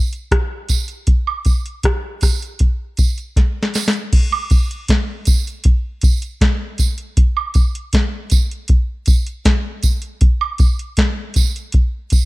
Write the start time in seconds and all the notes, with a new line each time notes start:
0.13 closed hi-hat
0.31 kick, cross-stick, closed hi-hat
0.69 kick, closed hi-hat, tambourine
0.88 closed hi-hat
1.07 kick, closed hi-hat
1.27 high woodblock
1.45 kick, closed hi-hat, tambourine
1.66 closed hi-hat
1.83 kick, cross-stick, closed hi-hat
2.21 kick, cross-stick, open hi-hat, tambourine
2.42 closed hi-hat
2.59 kick, closed hi-hat
2.97 kick, closed hi-hat, tambourine
3.18 closed hi-hat
3.36 kick, snare, closed hi-hat
3.63 snare
3.74 snare, open hi-hat, tambourine
3.88 snare
3.93 closed hi-hat
4.13 kick, closed hi-hat, crash
4.32 high woodblock
4.50 kick, closed hi-hat, tambourine
4.71 closed hi-hat
4.88 kick, snare, closed hi-hat
5.25 kick, closed hi-hat, tambourine
5.47 closed hi-hat
5.64 kick, closed hi-hat
6.01 kick, closed hi-hat, tambourine
6.22 closed hi-hat
6.41 kick, snare, closed hi-hat
6.78 kick, closed hi-hat, tambourine
6.98 closed hi-hat
7.17 kick, closed hi-hat
7.37 high woodblock
7.54 kick, closed hi-hat, tambourine
7.75 closed hi-hat
7.93 kick, snare, closed hi-hat
8.30 kick, closed hi-hat, tambourine
8.51 closed hi-hat
8.68 kick, closed hi-hat
9.06 kick, closed hi-hat, tambourine
9.27 closed hi-hat
9.45 kick, snare, closed hi-hat
9.83 kick, closed hi-hat, tambourine
10.02 closed hi-hat
10.21 kick, closed hi-hat
10.41 high woodblock
10.58 kick, closed hi-hat, tambourine
10.79 closed hi-hat
10.97 kick, snare, closed hi-hat
11.34 kick, closed hi-hat, tambourine
11.56 closed hi-hat
11.72 kick, closed hi-hat
12.10 kick, closed hi-hat, tambourine